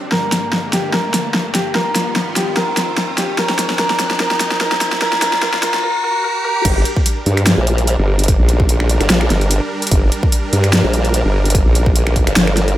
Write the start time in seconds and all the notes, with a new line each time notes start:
Already playing: D4, riser
0.12 G2 D3 A#3 A#4, snare
0.32 snare, closed hi-hat
0.53 snare
0.73 G4, snare, closed hi-hat
0.93 A#4, snare
1.14 snare, closed hi-hat
1.34 snare
1.55 G4, snare, closed hi-hat
1.75 D#3 F4 A#4, snare
1.96 snare, closed hi-hat
2.16 snare
2.36 G4, snare, closed hi-hat
2.57 A#4, snare
2.77 snare, closed hi-hat
2.98 snare
3.18 G4, snare, closed hi-hat
3.38 G#2 C4 A#4, snare
3.49 snare
3.59 snare, closed hi-hat
3.70 snare
3.79 A#4, snare
3.90 snare
4.00 snare, closed hi-hat
4.11 snare
4.20 A#4, snare
4.31 snare
4.40 snare, closed hi-hat
4.51 snare
4.61 A#4, snare
4.72 snare
4.81 snare, closed hi-hat
4.92 snare
5.02 D4 A#4, snare
5.13 snare
5.22 A#4, snare, closed hi-hat
5.33 snare
5.43 A#4, snare
5.54 snare
5.63 A#4, snare, closed hi-hat
5.74 snare
5.83 A#4
6.04 A#4
6.24 A#4
6.44 A#4
6.65 G1 G3 D4 A#4, kick, closed hi-hat, crash
6.85 closed hi-hat
6.96 kick
7.06 closed hi-hat
7.26 G2, closed hi-hat
7.37 finger snap, closed hi-hat
7.47 snare, closed hi-hat
7.58 A#1
7.67 closed hi-hat
7.78 closed hi-hat
7.87 closed hi-hat
7.99 G1
8.19 closed hi-hat
8.24 closed hi-hat
8.28 kick, closed hi-hat
8.39 A#1
8.49 closed hi-hat
8.60 kick
8.69 closed hi-hat
8.80 finger snap
8.89 closed hi-hat
9.01 G1, finger snap, closed hi-hat
9.10 A#1, snare, closed hi-hat
9.21 finger snap
9.30 G1, snare, closed hi-hat
9.41 closed hi-hat
9.51 closed hi-hat
9.82 closed hi-hat
9.87 closed hi-hat
9.91 G1, kick, closed hi-hat
10.12 closed hi-hat
10.23 kick
10.32 closed hi-hat
10.53 G2, closed hi-hat
10.64 finger snap, closed hi-hat
10.73 snare, closed hi-hat
10.84 A#1
10.94 closed hi-hat
11.05 closed hi-hat
11.14 closed hi-hat
11.25 G1
11.45 closed hi-hat
11.50 closed hi-hat
11.55 kick, closed hi-hat
11.66 A#1
11.75 closed hi-hat
11.86 kick
11.96 closed hi-hat
12.07 finger snap
12.16 kick, closed hi-hat
12.27 G1, finger snap, closed hi-hat
12.36 G1, snare, closed hi-hat
12.47 finger snap
12.57 snare, closed hi-hat
12.68 closed hi-hat